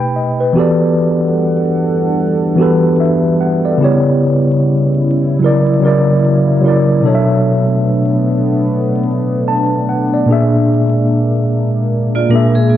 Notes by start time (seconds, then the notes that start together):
Already playing: B2 A3 D#4 G4 B4 B5
0.00 G5
0.16 D#5
0.40 B4
0.53 E3 G3 B3 D4 F#4 A4 F#5
0.57 G4 A4 D5
2.56 E3 B3 F#4
2.60 G4 A4 B4
3.00 E5
3.41 F#5
3.65 D5
3.78 C#3 B3 E4
3.83 G4 C#5
5.39 C#3 F#3 A#3 E4
5.44 A#4 D5
5.80 C#3 F#3 E4
5.85 A#4 D5
6.61 C#3 F#3 E4
6.66 A#4 D5
7.01 B2 F#3 A3 B3 D4
7.06 A4 C#5 D#5
7.15 E5
9.48 A5
9.89 F#5
10.14 D5
10.26 A#2 G#3 A#3 D4
10.31 G#4 E5
12.15 F4 D5
12.29 A#2 A#3 D4 A#4
12.34 G#4 E5
12.55 G#4